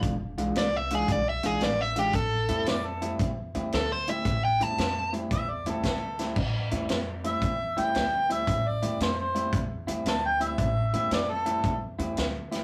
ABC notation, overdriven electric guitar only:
X:1
M:4/4
L:1/8
Q:"Swing" 1/4=114
K:Am
V:1 name="Overdriven electric guitar"
z2 (3d e ^G (3d e G (3d e =G | A2 z4 (3A c e- | (3e g a- a z4 z | z8 |
z8 | z8 |]